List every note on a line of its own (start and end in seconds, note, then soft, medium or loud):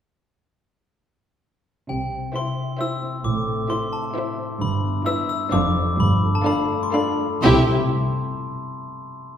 1.89 2.25 C2 soft
1.89 2.25 C3 soft
1.89 3.27 C3 soft
1.89 2.32 G5 soft
2.11 3.01 C4 soft
2.35 2.68 E4 soft
2.35 2.78 E4 soft
2.35 2.69 C5 soft
2.35 2.69 E5 soft
2.35 2.77 C6 medium
2.56 3.91 E5 soft
2.80 3.69 E4 soft
2.80 3.14 E4 soft
2.80 3.14 C5 soft
2.80 3.14 E5 soft
2.80 3.23 E6 medium
3.02 3.46 C4 soft
3.24 3.61 A1 medium
3.24 4.63 A2 medium
3.24 3.61 A2 medium
3.24 3.67 D6 medium
3.47 4.36 C4 soft
3.70 4.14 E4 soft
3.70 4.04 E4 medium
3.70 4.04 C5 soft
3.70 4.04 E5 medium
3.70 3.91 C6 medium
3.92 5.27 E5 soft
3.92 4.35 A5 medium
4.15 4.49 E4 medium
4.15 5.05 E4 soft
4.15 4.50 C5 medium
4.15 4.50 E5 medium
4.37 4.62 C4 soft
4.60 4.97 G1 medium
4.60 5.54 G2 medium
4.60 4.97 G2 medium
4.60 5.03 B5 medium
4.84 5.54 B3 soft
5.06 5.54 E4 medium
5.06 5.40 E4 medium
5.06 5.40 B4 medium
5.06 5.41 E5 medium
5.06 5.28 E6 medium
5.29 5.54 E5 medium
5.29 5.51 E6 medium
5.51 5.89 F1 medium
5.51 6.00 F2 medium
5.51 5.89 F2 medium
5.51 5.87 D4 medium
5.51 5.86 C5 medium
5.51 5.87 F5 medium
5.51 5.95 D6 medium
5.74 6.45 F4 medium
5.74 6.69 D5 medium
5.98 6.36 G1 medium
5.98 6.36 G2 medium
5.98 7.44 G2 medium
5.98 6.32 B5 medium
6.22 7.18 A3 medium
6.35 6.46 A5 medium
6.45 6.82 D4 medium
6.45 6.92 F4 medium
6.45 6.81 A4 medium
6.45 6.81 F5 medium
6.45 6.79 B5 medium
6.70 7.45 D5 medium
6.83 6.94 C6 medium
6.93 7.31 D4 medium
6.93 7.44 F4 medium
6.93 7.30 A4 medium
6.93 7.30 F5 medium
6.93 7.39 B5 medium
7.19 7.45 A3 soft
7.40 7.69 C2 medium
7.40 7.69 C3 medium
7.40 7.69 G3 medium
7.40 7.69 C4 medium
7.40 7.70 E4 medium
7.40 7.69 E4 medium
7.40 7.69 G4 medium
7.40 7.69 E5 medium
7.40 7.69 C6 medium
7.45 7.69 C5 medium